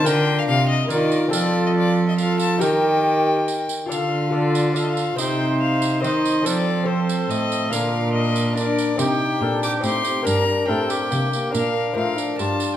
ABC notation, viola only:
X:1
M:3/4
L:1/8
Q:1/4=141
K:Fmix
V:1 name="Viola"
B4 B2 | A4 A2 | B4- B z | A2 A2 A2 |
c4 c2 | A2 A4 | B4 B2 | G2 A G G2 |
B2 A G3 | B B3 F2 |]